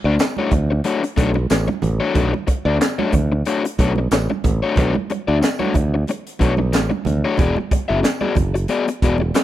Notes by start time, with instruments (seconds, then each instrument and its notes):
0.04 fingered electric bass D2, overdriven electric guitar A3 D4 F#4 D5
0.19 muted overdriven electric guitar stroke, snare, clap, closed hi-hat, tambourine, muted conga
0.37 overdriven electric guitar A3 D4 F#4 C#5, high conga
0.51 fingered electric bass D2, muted overdriven electric guitar stroke, kick, closed hi-hat, muted conga, low conga
0.71 muted overdriven electric guitar stroke
0.84 overdriven electric guitar A3 D4 F#4 C#5, closed hi-hat
1.03 muted overdriven electric guitar stroke, closed hi-hat
1.16 fingered electric bass B1, overdriven electric guitar A3 D4 F#4 C#5, kick, closed hi-hat, muted conga
1.34 muted overdriven electric guitar stroke, high conga
1.50 fingered electric bass A1, muted overdriven electric guitar stroke, snare, clap, closed hi-hat, tambourine
1.68 muted overdriven electric guitar stroke, high conga
1.82 fingered electric bass A1, closed hi-hat, low conga
2.00 overdriven electric guitar A3 D4 F#4 C#5
2.14 fingered electric bass B1, overdriven electric guitar A3 D4 F#4 C#5, kick, closed hi-hat, low conga
2.33 muted overdriven electric guitar stroke, high conga
2.47 muted overdriven electric guitar stroke, kick, closed hi-hat
2.65 fingered electric bass D2, overdriven electric guitar A3 D4 F#4 D5
2.79 muted overdriven electric guitar stroke, snare, clap, closed hi-hat, tambourine, muted conga
2.98 overdriven electric guitar A3 D4 F#4 C#5, high conga
3.12 fingered electric bass D2, muted overdriven electric guitar stroke, kick, closed hi-hat, low conga
3.32 muted overdriven electric guitar stroke
3.45 overdriven electric guitar A3 D4 F#4 C#5, closed hi-hat
3.64 muted overdriven electric guitar stroke, closed hi-hat
3.78 fingered electric bass B1, overdriven electric guitar A3 D4 F#4 C#5, kick, closed hi-hat, muted conga
3.96 muted overdriven electric guitar stroke, high conga
4.11 fingered electric bass A1, muted overdriven electric guitar stroke, snare, clap, closed hi-hat, tambourine
4.30 muted overdriven electric guitar stroke, high conga
4.44 fingered electric bass A1, kick, closed hi-hat, muted conga, low conga
4.63 overdriven electric guitar A3 D4 F#4 C#5
4.76 fingered electric bass B1, overdriven electric guitar A3 D4 F#4 C#5, kick, closed hi-hat, muted conga, low conga
4.95 muted overdriven electric guitar stroke, high conga
5.10 muted overdriven electric guitar stroke, closed hi-hat, muted conga
5.28 fingered electric bass D2, overdriven electric guitar A3 D4 F#4 D5
5.41 muted overdriven electric guitar stroke, snare, clap, closed hi-hat, tambourine, muted conga
5.59 overdriven electric guitar A3 D4 F#4 C#5, high conga
5.74 fingered electric bass D2, muted overdriven electric guitar stroke, kick, closed hi-hat, muted conga, low conga
5.94 muted overdriven electric guitar stroke
6.07 muted overdriven electric guitar stroke, closed hi-hat, muted conga
6.27 closed hi-hat
6.39 fingered electric bass B1, overdriven electric guitar A3 D4 F#4 C#5, kick, closed hi-hat, muted conga
6.57 muted overdriven electric guitar stroke, high conga
6.73 fingered electric bass A1, muted overdriven electric guitar stroke, snare, clap, closed hi-hat, tambourine, muted conga
6.90 muted overdriven electric guitar stroke, high conga
7.05 fingered electric bass D2, closed hi-hat, low conga
7.25 overdriven electric guitar A3 D4 F#4 C#5
7.37 fingered electric bass E1, overdriven electric guitar B3 F#4 G#4 D5, kick, closed hi-hat, low conga
7.56 muted overdriven electric guitar stroke, high conga
7.71 muted overdriven electric guitar stroke, kick, closed hi-hat, muted conga
7.88 fingered electric bass F#1, overdriven electric guitar B3 F#4 G#4 E5
8.03 muted overdriven electric guitar stroke, snare, clap, closed hi-hat, tambourine, muted conga
8.21 overdriven electric guitar B3 F#4 G#4 D5, high conga
8.35 fingered electric bass F#1, muted overdriven electric guitar stroke, kick, closed hi-hat, low conga
8.54 muted overdriven electric guitar stroke, closed hi-hat
8.68 overdriven electric guitar B3 F#4 G#4 D5, closed hi-hat, muted conga
8.88 muted overdriven electric guitar stroke, closed hi-hat
9.02 fingered electric bass E1, overdriven electric guitar B3 F#4 G#4 D5, kick, closed hi-hat
9.18 muted overdriven electric guitar stroke, high conga
9.34 muted overdriven electric guitar stroke, snare, clap, closed hi-hat, tambourine, muted conga